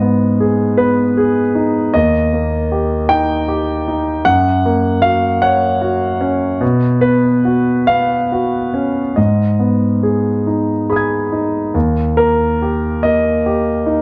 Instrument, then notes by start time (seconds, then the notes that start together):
grand piano
Already playing: G#2 D#5
0.01 B3
0.40 G#4
0.78 B3 B4
1.17 G#4
1.55 D#4
1.94 D#2 D#5
2.33 A#3
2.72 G4
3.09 D#4 G5
3.48 G4
3.88 D#4
4.25 F#2 F#5
4.65 A#3
5.02 F#4 F5
5.42 C#5 F#5
5.82 F#4
6.21 C#4
6.61 B2
7.01 B3 B4
7.45 F#4
7.87 B3 F5
8.32 F#4
8.74 C#4
9.16 G#2 D#5
9.59 B3
10.03 G#4
10.47 D#4
10.90 G#4 B5 D#6
10.96 G#6
11.32 D#4
11.74 D#2
12.17 A#3 A#4
12.62 G4
13.03 A#3 D#5
13.46 G4
13.86 D#4